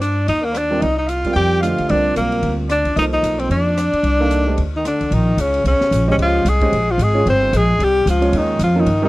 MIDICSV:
0, 0, Header, 1, 7, 480
1, 0, Start_track
1, 0, Tempo, 268097
1, 1470, Time_signature, 4, 2, 24, 8
1, 16269, End_track
2, 0, Start_track
2, 0, Title_t, "Grand piano"
2, 0, Program_c, 0, 0
2, 1262, Note_on_c, 0, 60, 60
2, 1263, Note_on_c, 0, 55, 58
2, 1267, Note_on_c, 0, 65, 61
2, 1273, Note_on_c, 0, 70, 54
2, 1277, Note_on_c, 0, 74, 68
2, 1445, Note_off_c, 0, 60, 0
2, 1446, Note_off_c, 0, 55, 0
2, 1447, Note_off_c, 0, 65, 0
2, 1450, Note_off_c, 0, 70, 0
2, 1453, Note_off_c, 0, 74, 0
2, 2245, Note_on_c, 0, 55, 48
2, 2251, Note_on_c, 0, 60, 50
2, 2258, Note_on_c, 0, 70, 47
2, 2261, Note_on_c, 0, 65, 48
2, 2262, Note_on_c, 0, 74, 57
2, 2878, Note_off_c, 0, 55, 0
2, 2881, Note_off_c, 0, 60, 0
2, 2885, Note_off_c, 0, 70, 0
2, 2886, Note_off_c, 0, 65, 0
2, 2886, Note_off_c, 0, 74, 0
2, 2921, Note_on_c, 0, 57, 47
2, 2925, Note_on_c, 0, 50, 45
2, 2929, Note_on_c, 0, 75, 53
2, 2933, Note_on_c, 0, 67, 49
2, 2936, Note_on_c, 0, 72, 45
2, 3402, Note_on_c, 0, 55, 58
2, 3409, Note_on_c, 0, 60, 51
2, 3413, Note_on_c, 0, 70, 48
2, 3414, Note_on_c, 0, 65, 55
2, 3414, Note_on_c, 0, 74, 65
2, 3624, Note_off_c, 0, 57, 0
2, 3625, Note_off_c, 0, 50, 0
2, 3627, Note_off_c, 0, 75, 0
2, 3629, Note_off_c, 0, 67, 0
2, 3631, Note_off_c, 0, 72, 0
2, 4720, Note_off_c, 0, 55, 0
2, 4724, Note_off_c, 0, 60, 0
2, 4726, Note_off_c, 0, 70, 0
2, 4726, Note_off_c, 0, 74, 0
2, 4727, Note_off_c, 0, 65, 0
2, 5321, Note_on_c, 0, 53, 49
2, 5321, Note_on_c, 0, 58, 44
2, 5324, Note_on_c, 0, 63, 47
2, 5328, Note_on_c, 0, 69, 49
2, 5333, Note_on_c, 0, 72, 55
2, 6641, Note_off_c, 0, 53, 0
2, 6641, Note_off_c, 0, 58, 0
2, 6642, Note_off_c, 0, 63, 0
2, 6644, Note_off_c, 0, 69, 0
2, 6647, Note_off_c, 0, 72, 0
2, 7525, Note_on_c, 0, 69, 65
2, 7530, Note_on_c, 0, 58, 74
2, 7533, Note_on_c, 0, 63, 64
2, 7538, Note_on_c, 0, 74, 67
2, 7538, Note_on_c, 0, 77, 72
2, 7974, Note_off_c, 0, 69, 0
2, 7977, Note_off_c, 0, 58, 0
2, 7979, Note_off_c, 0, 63, 0
2, 7981, Note_off_c, 0, 74, 0
2, 7981, Note_off_c, 0, 77, 0
2, 7994, Note_on_c, 0, 57, 51
2, 7996, Note_on_c, 0, 62, 46
2, 7999, Note_on_c, 0, 67, 47
2, 8001, Note_on_c, 0, 75, 56
2, 8006, Note_on_c, 0, 72, 43
2, 8175, Note_off_c, 0, 57, 0
2, 8175, Note_off_c, 0, 62, 0
2, 8177, Note_off_c, 0, 67, 0
2, 8178, Note_off_c, 0, 75, 0
2, 8181, Note_off_c, 0, 72, 0
2, 10877, Note_on_c, 0, 56, 65
2, 10877, Note_on_c, 0, 72, 62
2, 10881, Note_on_c, 0, 61, 60
2, 10883, Note_on_c, 0, 75, 77
2, 10885, Note_on_c, 0, 67, 60
2, 11515, Note_off_c, 0, 56, 0
2, 11515, Note_off_c, 0, 72, 0
2, 11517, Note_off_c, 0, 61, 0
2, 11518, Note_off_c, 0, 75, 0
2, 11520, Note_off_c, 0, 67, 0
2, 11850, Note_on_c, 0, 56, 71
2, 11852, Note_on_c, 0, 61, 59
2, 11856, Note_on_c, 0, 72, 62
2, 11857, Note_on_c, 0, 67, 63
2, 11863, Note_on_c, 0, 75, 77
2, 12022, Note_off_c, 0, 56, 0
2, 12023, Note_off_c, 0, 61, 0
2, 12025, Note_off_c, 0, 67, 0
2, 12025, Note_off_c, 0, 72, 0
2, 12028, Note_off_c, 0, 75, 0
2, 12791, Note_on_c, 0, 56, 64
2, 12795, Note_on_c, 0, 73, 75
2, 12796, Note_on_c, 0, 61, 65
2, 12799, Note_on_c, 0, 68, 62
2, 12800, Note_on_c, 0, 65, 61
2, 12972, Note_off_c, 0, 56, 0
2, 12974, Note_off_c, 0, 61, 0
2, 12974, Note_off_c, 0, 73, 0
2, 12976, Note_off_c, 0, 65, 0
2, 12976, Note_off_c, 0, 68, 0
2, 14707, Note_on_c, 0, 65, 59
2, 14710, Note_on_c, 0, 56, 68
2, 14712, Note_on_c, 0, 61, 57
2, 14715, Note_on_c, 0, 73, 73
2, 14719, Note_on_c, 0, 68, 62
2, 15349, Note_off_c, 0, 65, 0
2, 15350, Note_off_c, 0, 56, 0
2, 15351, Note_off_c, 0, 61, 0
2, 15352, Note_off_c, 0, 73, 0
2, 15354, Note_off_c, 0, 68, 0
2, 15675, Note_on_c, 0, 53, 63
2, 15675, Note_on_c, 0, 61, 61
2, 15677, Note_on_c, 0, 70, 68
2, 15678, Note_on_c, 0, 65, 60
2, 15679, Note_on_c, 0, 58, 60
2, 15852, Note_off_c, 0, 53, 0
2, 15852, Note_off_c, 0, 61, 0
2, 15853, Note_off_c, 0, 70, 0
2, 15854, Note_off_c, 0, 58, 0
2, 15854, Note_off_c, 0, 65, 0
2, 16150, Note_on_c, 0, 55, 81
2, 16152, Note_on_c, 0, 63, 68
2, 16158, Note_on_c, 0, 60, 69
2, 16160, Note_on_c, 0, 67, 72
2, 16162, Note_on_c, 0, 70, 82
2, 16269, Note_off_c, 0, 55, 0
2, 16269, Note_off_c, 0, 60, 0
2, 16269, Note_off_c, 0, 63, 0
2, 16269, Note_off_c, 0, 67, 0
2, 16269, Note_off_c, 0, 70, 0
2, 16269, End_track
3, 0, Start_track
3, 0, Title_t, "Tenor saxophone"
3, 0, Program_c, 1, 66
3, 26, Note_on_c, 1, 62, 77
3, 474, Note_off_c, 1, 62, 0
3, 515, Note_on_c, 1, 63, 87
3, 798, Note_on_c, 1, 58, 79
3, 825, Note_off_c, 1, 63, 0
3, 1030, Note_on_c, 1, 62, 80
3, 1057, Note_off_c, 1, 58, 0
3, 1474, Note_on_c, 1, 63, 83
3, 1501, Note_off_c, 1, 62, 0
3, 1748, Note_off_c, 1, 63, 0
3, 1759, Note_on_c, 1, 63, 79
3, 1955, Note_on_c, 1, 65, 79
3, 1982, Note_off_c, 1, 63, 0
3, 2424, Note_off_c, 1, 65, 0
3, 2435, Note_on_c, 1, 67, 90
3, 2880, Note_off_c, 1, 67, 0
3, 2912, Note_on_c, 1, 65, 78
3, 3407, Note_on_c, 1, 62, 88
3, 3434, Note_off_c, 1, 65, 0
3, 3876, Note_off_c, 1, 62, 0
3, 3887, Note_on_c, 1, 58, 78
3, 4591, Note_off_c, 1, 58, 0
3, 4855, Note_on_c, 1, 62, 79
3, 5292, Note_off_c, 1, 62, 0
3, 5346, Note_on_c, 1, 63, 88
3, 5466, Note_off_c, 1, 63, 0
3, 5607, Note_on_c, 1, 63, 85
3, 6083, Note_on_c, 1, 60, 75
3, 6109, Note_off_c, 1, 63, 0
3, 6278, Note_off_c, 1, 60, 0
3, 6296, Note_on_c, 1, 62, 91
3, 8418, Note_off_c, 1, 62, 0
3, 8531, Note_on_c, 1, 63, 70
3, 8691, Note_off_c, 1, 63, 0
3, 8727, Note_on_c, 1, 62, 70
3, 9202, Note_on_c, 1, 63, 84
3, 9229, Note_off_c, 1, 62, 0
3, 9685, Note_on_c, 1, 61, 82
3, 9711, Note_off_c, 1, 63, 0
3, 10141, Note_off_c, 1, 61, 0
3, 10160, Note_on_c, 1, 61, 89
3, 10849, Note_off_c, 1, 61, 0
3, 10951, Note_on_c, 1, 61, 80
3, 11023, Note_off_c, 1, 61, 0
3, 11141, Note_on_c, 1, 65, 99
3, 11611, Note_on_c, 1, 68, 95
3, 11638, Note_off_c, 1, 65, 0
3, 12374, Note_on_c, 1, 65, 85
3, 12401, Note_off_c, 1, 68, 0
3, 12588, Note_on_c, 1, 68, 93
3, 12615, Note_off_c, 1, 65, 0
3, 13031, Note_off_c, 1, 68, 0
3, 13069, Note_on_c, 1, 72, 101
3, 13550, Note_on_c, 1, 68, 98
3, 13577, Note_off_c, 1, 72, 0
3, 14034, Note_on_c, 1, 67, 103
3, 14061, Note_off_c, 1, 68, 0
3, 14473, Note_off_c, 1, 67, 0
3, 14515, Note_on_c, 1, 65, 85
3, 14993, Note_on_c, 1, 63, 97
3, 15020, Note_off_c, 1, 65, 0
3, 15433, Note_off_c, 1, 63, 0
3, 15467, Note_on_c, 1, 65, 87
3, 15754, Note_on_c, 1, 63, 94
3, 15781, Note_off_c, 1, 65, 0
3, 16194, Note_off_c, 1, 63, 0
3, 16206, Note_on_c, 1, 63, 82
3, 16269, Note_off_c, 1, 63, 0
3, 16269, End_track
4, 0, Start_track
4, 0, Title_t, "Alto saxophone"
4, 0, Program_c, 2, 65
4, 1, Note_on_c, 2, 74, 65
4, 461, Note_off_c, 2, 74, 0
4, 482, Note_on_c, 2, 75, 63
4, 742, Note_on_c, 2, 70, 65
4, 768, Note_off_c, 2, 75, 0
4, 947, Note_on_c, 2, 74, 70
4, 974, Note_off_c, 2, 70, 0
4, 1415, Note_on_c, 2, 75, 71
4, 1442, Note_off_c, 2, 74, 0
4, 1713, Note_off_c, 2, 75, 0
4, 1724, Note_on_c, 2, 75, 66
4, 1912, Note_on_c, 2, 77, 66
4, 1939, Note_off_c, 2, 75, 0
4, 2370, Note_off_c, 2, 77, 0
4, 2381, Note_on_c, 2, 79, 78
4, 2851, Note_off_c, 2, 79, 0
4, 2867, Note_on_c, 2, 77, 68
4, 3369, Note_on_c, 2, 74, 70
4, 3396, Note_off_c, 2, 77, 0
4, 3841, Note_off_c, 2, 74, 0
4, 3852, Note_on_c, 2, 70, 60
4, 4572, Note_off_c, 2, 70, 0
4, 4809, Note_on_c, 2, 74, 65
4, 5268, Note_off_c, 2, 74, 0
4, 5300, Note_on_c, 2, 75, 71
4, 5430, Note_off_c, 2, 75, 0
4, 5589, Note_on_c, 2, 75, 61
4, 6060, Note_on_c, 2, 72, 64
4, 6087, Note_off_c, 2, 75, 0
4, 6258, Note_off_c, 2, 72, 0
4, 6269, Note_on_c, 2, 74, 65
4, 8405, Note_off_c, 2, 74, 0
4, 8509, Note_on_c, 2, 51, 62
4, 8679, Note_off_c, 2, 51, 0
4, 8687, Note_on_c, 2, 50, 61
4, 9178, Note_on_c, 2, 51, 72
4, 9205, Note_off_c, 2, 50, 0
4, 9663, Note_on_c, 2, 49, 69
4, 9690, Note_off_c, 2, 51, 0
4, 10118, Note_off_c, 2, 49, 0
4, 10129, Note_on_c, 2, 49, 68
4, 10832, Note_off_c, 2, 49, 0
4, 10905, Note_on_c, 2, 49, 56
4, 10988, Note_off_c, 2, 49, 0
4, 11093, Note_on_c, 2, 53, 73
4, 11599, Note_on_c, 2, 56, 77
4, 11625, Note_off_c, 2, 53, 0
4, 12364, Note_on_c, 2, 53, 70
4, 12390, Note_off_c, 2, 56, 0
4, 12555, Note_on_c, 2, 56, 74
4, 12581, Note_off_c, 2, 53, 0
4, 13006, Note_off_c, 2, 56, 0
4, 13016, Note_on_c, 2, 60, 83
4, 13498, Note_on_c, 2, 56, 73
4, 13525, Note_off_c, 2, 60, 0
4, 14001, Note_on_c, 2, 55, 75
4, 14028, Note_off_c, 2, 56, 0
4, 14457, Note_off_c, 2, 55, 0
4, 14467, Note_on_c, 2, 53, 77
4, 14954, Note_on_c, 2, 51, 74
4, 14981, Note_off_c, 2, 53, 0
4, 15413, Note_off_c, 2, 51, 0
4, 15432, Note_on_c, 2, 53, 68
4, 15705, Note_on_c, 2, 51, 70
4, 15732, Note_off_c, 2, 53, 0
4, 16169, Note_off_c, 2, 51, 0
4, 16190, Note_on_c, 2, 51, 75
4, 16269, Note_off_c, 2, 51, 0
4, 16269, End_track
5, 0, Start_track
5, 0, Title_t, "Upright bass"
5, 0, Program_c, 3, 32
5, 0, Note_on_c, 3, 43, 80
5, 453, Note_off_c, 3, 43, 0
5, 500, Note_on_c, 3, 39, 77
5, 1417, Note_off_c, 3, 39, 0
5, 1470, Note_on_c, 3, 36, 73
5, 2383, Note_off_c, 3, 36, 0
5, 2426, Note_on_c, 3, 41, 79
5, 3138, Note_off_c, 3, 41, 0
5, 3207, Note_on_c, 3, 38, 56
5, 3385, Note_off_c, 3, 38, 0
5, 3400, Note_on_c, 3, 36, 84
5, 3843, Note_off_c, 3, 36, 0
5, 3878, Note_on_c, 3, 35, 74
5, 4322, Note_off_c, 3, 35, 0
5, 4345, Note_on_c, 3, 38, 79
5, 5059, Note_off_c, 3, 38, 0
5, 5093, Note_on_c, 3, 37, 56
5, 5288, Note_off_c, 3, 37, 0
5, 5305, Note_on_c, 3, 36, 77
5, 5756, Note_off_c, 3, 36, 0
5, 5780, Note_on_c, 3, 35, 65
5, 6234, Note_off_c, 3, 35, 0
5, 6256, Note_on_c, 3, 41, 72
5, 6975, Note_off_c, 3, 41, 0
5, 7219, Note_on_c, 3, 36, 72
5, 8140, Note_off_c, 3, 36, 0
5, 8198, Note_on_c, 3, 38, 74
5, 8907, Note_off_c, 3, 38, 0
5, 8958, Note_on_c, 3, 36, 57
5, 9136, Note_off_c, 3, 36, 0
5, 9147, Note_on_c, 3, 34, 85
5, 9608, Note_off_c, 3, 34, 0
5, 9619, Note_on_c, 3, 37, 83
5, 10093, Note_off_c, 3, 37, 0
5, 10103, Note_on_c, 3, 36, 81
5, 10372, Note_off_c, 3, 36, 0
5, 10586, Note_on_c, 3, 34, 88
5, 11056, Note_off_c, 3, 34, 0
5, 11067, Note_on_c, 3, 37, 81
5, 11533, Note_off_c, 3, 37, 0
5, 11544, Note_on_c, 3, 36, 91
5, 12015, Note_off_c, 3, 36, 0
5, 12036, Note_on_c, 3, 34, 82
5, 12482, Note_off_c, 3, 34, 0
5, 12493, Note_on_c, 3, 32, 87
5, 12969, Note_off_c, 3, 32, 0
5, 12997, Note_on_c, 3, 31, 89
5, 13461, Note_off_c, 3, 31, 0
5, 13476, Note_on_c, 3, 34, 95
5, 13940, Note_off_c, 3, 34, 0
5, 13949, Note_on_c, 3, 36, 86
5, 14416, Note_off_c, 3, 36, 0
5, 14427, Note_on_c, 3, 37, 94
5, 14895, Note_off_c, 3, 37, 0
5, 14904, Note_on_c, 3, 39, 86
5, 15373, Note_off_c, 3, 39, 0
5, 15385, Note_on_c, 3, 41, 87
5, 15850, Note_off_c, 3, 41, 0
5, 15860, Note_on_c, 3, 43, 81
5, 16269, Note_off_c, 3, 43, 0
5, 16269, End_track
6, 0, Start_track
6, 0, Title_t, "Muted upright bass strokes"
6, 7033, Note_on_c, 9, 29, 33
6, 7212, Note_off_c, 9, 29, 0
6, 10389, Note_on_c, 9, 29, 37
6, 10568, Note_off_c, 9, 29, 0
6, 16269, End_track
7, 0, Start_track
7, 0, Title_t, "Drums"
7, 28, Note_on_c, 9, 44, 42
7, 28, Note_on_c, 9, 51, 52
7, 207, Note_off_c, 9, 44, 0
7, 207, Note_off_c, 9, 51, 0
7, 503, Note_on_c, 9, 51, 51
7, 682, Note_off_c, 9, 51, 0
7, 976, Note_on_c, 9, 37, 55
7, 976, Note_on_c, 9, 44, 40
7, 976, Note_on_c, 9, 51, 49
7, 1155, Note_off_c, 9, 37, 0
7, 1155, Note_off_c, 9, 44, 0
7, 1155, Note_off_c, 9, 51, 0
7, 1469, Note_on_c, 9, 51, 50
7, 1648, Note_off_c, 9, 51, 0
7, 1945, Note_on_c, 9, 44, 44
7, 1945, Note_on_c, 9, 51, 50
7, 2124, Note_off_c, 9, 44, 0
7, 2124, Note_off_c, 9, 51, 0
7, 2229, Note_on_c, 9, 51, 38
7, 2233, Note_on_c, 9, 36, 46
7, 2408, Note_off_c, 9, 51, 0
7, 2412, Note_off_c, 9, 36, 0
7, 2435, Note_on_c, 9, 51, 47
7, 2614, Note_off_c, 9, 51, 0
7, 2916, Note_on_c, 9, 37, 53
7, 2916, Note_on_c, 9, 44, 47
7, 2916, Note_on_c, 9, 51, 51
7, 3095, Note_off_c, 9, 37, 0
7, 3095, Note_off_c, 9, 44, 0
7, 3095, Note_off_c, 9, 51, 0
7, 3193, Note_on_c, 9, 51, 38
7, 3372, Note_off_c, 9, 51, 0
7, 3388, Note_on_c, 9, 51, 53
7, 3567, Note_off_c, 9, 51, 0
7, 3869, Note_on_c, 9, 44, 45
7, 3869, Note_on_c, 9, 51, 56
7, 4048, Note_off_c, 9, 44, 0
7, 4048, Note_off_c, 9, 51, 0
7, 4153, Note_on_c, 9, 51, 36
7, 4332, Note_off_c, 9, 51, 0
7, 4345, Note_on_c, 9, 51, 48
7, 4524, Note_off_c, 9, 51, 0
7, 4825, Note_on_c, 9, 37, 50
7, 4825, Note_on_c, 9, 44, 42
7, 4825, Note_on_c, 9, 51, 52
7, 5004, Note_off_c, 9, 37, 0
7, 5004, Note_off_c, 9, 44, 0
7, 5004, Note_off_c, 9, 51, 0
7, 5104, Note_on_c, 9, 51, 37
7, 5283, Note_off_c, 9, 51, 0
7, 5313, Note_on_c, 9, 51, 49
7, 5492, Note_off_c, 9, 51, 0
7, 5793, Note_on_c, 9, 44, 48
7, 5793, Note_on_c, 9, 51, 55
7, 5972, Note_off_c, 9, 44, 0
7, 5972, Note_off_c, 9, 51, 0
7, 6078, Note_on_c, 9, 51, 38
7, 6257, Note_off_c, 9, 51, 0
7, 6277, Note_on_c, 9, 51, 49
7, 6457, Note_off_c, 9, 51, 0
7, 6759, Note_on_c, 9, 37, 57
7, 6759, Note_on_c, 9, 44, 44
7, 6759, Note_on_c, 9, 51, 52
7, 6938, Note_off_c, 9, 37, 0
7, 6938, Note_off_c, 9, 44, 0
7, 6938, Note_off_c, 9, 51, 0
7, 7042, Note_on_c, 9, 51, 40
7, 7221, Note_off_c, 9, 51, 0
7, 7227, Note_on_c, 9, 51, 49
7, 7406, Note_off_c, 9, 51, 0
7, 7712, Note_on_c, 9, 44, 45
7, 7712, Note_on_c, 9, 51, 54
7, 7891, Note_off_c, 9, 44, 0
7, 7891, Note_off_c, 9, 51, 0
7, 8194, Note_on_c, 9, 51, 50
7, 8374, Note_off_c, 9, 51, 0
7, 8686, Note_on_c, 9, 37, 56
7, 8686, Note_on_c, 9, 44, 52
7, 8686, Note_on_c, 9, 51, 52
7, 8866, Note_off_c, 9, 37, 0
7, 8866, Note_off_c, 9, 44, 0
7, 8866, Note_off_c, 9, 51, 0
7, 8965, Note_on_c, 9, 51, 35
7, 9144, Note_off_c, 9, 51, 0
7, 9163, Note_on_c, 9, 51, 58
7, 9342, Note_off_c, 9, 51, 0
7, 9635, Note_on_c, 9, 44, 46
7, 9635, Note_on_c, 9, 51, 64
7, 9814, Note_off_c, 9, 44, 0
7, 9814, Note_off_c, 9, 51, 0
7, 9915, Note_on_c, 9, 51, 42
7, 10094, Note_off_c, 9, 51, 0
7, 10125, Note_on_c, 9, 51, 60
7, 10304, Note_off_c, 9, 51, 0
7, 10399, Note_on_c, 9, 38, 37
7, 10578, Note_off_c, 9, 38, 0
7, 10604, Note_on_c, 9, 44, 56
7, 10604, Note_on_c, 9, 51, 66
7, 10783, Note_off_c, 9, 44, 0
7, 10783, Note_off_c, 9, 51, 0
7, 11079, Note_on_c, 9, 51, 58
7, 11258, Note_off_c, 9, 51, 0
7, 11559, Note_on_c, 9, 44, 56
7, 11559, Note_on_c, 9, 51, 67
7, 11738, Note_off_c, 9, 44, 0
7, 11738, Note_off_c, 9, 51, 0
7, 11838, Note_on_c, 9, 36, 66
7, 11839, Note_on_c, 9, 51, 45
7, 12017, Note_off_c, 9, 36, 0
7, 12018, Note_off_c, 9, 51, 0
7, 12044, Note_on_c, 9, 51, 60
7, 12223, Note_off_c, 9, 51, 0
7, 12517, Note_on_c, 9, 44, 57
7, 12517, Note_on_c, 9, 51, 65
7, 12696, Note_off_c, 9, 44, 0
7, 12696, Note_off_c, 9, 51, 0
7, 13009, Note_on_c, 9, 51, 56
7, 13188, Note_off_c, 9, 51, 0
7, 13483, Note_on_c, 9, 44, 51
7, 13483, Note_on_c, 9, 51, 61
7, 13663, Note_off_c, 9, 44, 0
7, 13663, Note_off_c, 9, 51, 0
7, 13967, Note_on_c, 9, 51, 58
7, 14146, Note_off_c, 9, 51, 0
7, 14452, Note_on_c, 9, 44, 63
7, 14452, Note_on_c, 9, 51, 62
7, 14631, Note_off_c, 9, 44, 0
7, 14631, Note_off_c, 9, 51, 0
7, 14718, Note_on_c, 9, 51, 43
7, 14897, Note_off_c, 9, 51, 0
7, 14914, Note_on_c, 9, 51, 58
7, 15093, Note_off_c, 9, 51, 0
7, 15387, Note_on_c, 9, 44, 49
7, 15387, Note_on_c, 9, 51, 64
7, 15566, Note_off_c, 9, 44, 0
7, 15566, Note_off_c, 9, 51, 0
7, 15871, Note_on_c, 9, 51, 61
7, 16050, Note_off_c, 9, 51, 0
7, 16269, End_track
0, 0, End_of_file